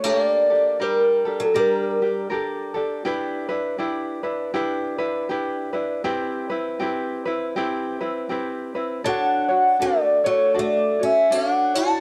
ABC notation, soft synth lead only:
X:1
M:4/4
L:1/16
Q:"Swing" 1/4=80
K:D
V:1 name="Soft synth lead"
d4 _B3 A B4 z4 | z16 | z16 | f4 d2 c2 d2 e2 f2 a2 |]